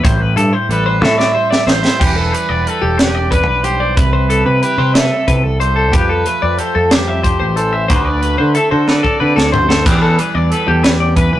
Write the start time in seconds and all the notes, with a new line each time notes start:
Already playing: G3 E4
0.04 A1 A2 C5, kick, closed hi-hat
0.21 B4
0.36 G2 G4 A4, closed hi-hat
0.53 C5
0.69 A1 G3 A4 B4, closed hi-hat
0.86 C5
1.01 A2 E4 A4 E5, snare
1.18 D5, snare
1.34 G3 C5
1.51 D5, snare
1.67 A1 E4 C5, snare
1.83 E5, snare
2.00 E1 E3 G4 B4, kick, crash
2.16 A4
2.32 G3 B4, closed hi-hat
2.49 E1 D5
2.65 G4 A4 B4, closed hi-hat
2.82 E1 G4
2.97 D4 G4 B4, snare, closed hi-hat
3.15 D5
3.31 D4 B4, kick, closed hi-hat
3.47 B1 B4
3.63 G3 G4 C5, closed hi-hat
3.80 D5
3.96 C2 C3 B4, kick, closed hi-hat
4.13 C5
4.29 G3 A4, closed hi-hat
4.46 C3 B4
4.62 E4 G4 B4, closed hi-hat
4.78 C3 G4 C5
4.94 A4 B4 E5, snare, closed hi-hat
5.11 A4
5.28 C3 E4 B4, kick, closed hi-hat
5.44 C2 A4
5.60 G3 C5, closed hi-hat
5.76 A4
5.92 F2 F3 G4 B4, kick, closed hi-hat
6.10 A4
6.26 A3 B4, closed hi-hat
6.42 F2 D5
6.58 G4 A4 C5, closed hi-hat
6.75 F2 A4
6.91 G3 G4 C5, snare, closed hi-hat
7.08 E5
7.24 F3 C5, kick, closed hi-hat
7.40 A1 C5
7.56 E3 A4 C5, closed hi-hat
7.73 E5
7.88 D2 D3 B4 C5, kick, closed hi-hat
8.05 D5
8.21 A3 B4, closed hi-hat
8.38 D3 C5
8.54 E4 A4, closed hi-hat
8.71 D3 F#4 C5
8.87 A4 B4 D5, snare
9.03 A4, kick
9.20 D3 C4 B4
9.36 D2 A4, snare
9.52 A3 C5, floor tom
9.69 A4, snare
9.86 E2 E3 G4 B4, kick, closed hi-hat, crash
10.02 A4
10.18 G3 B4, closed hi-hat
10.35 E2 D5
10.50 G4 A4 B4, closed hi-hat
10.68 E2 G4
10.84 G4 B4, snare, closed hi-hat
11.00 D5
11.16 E3 B4, kick, closed hi-hat
11.33 B1 B4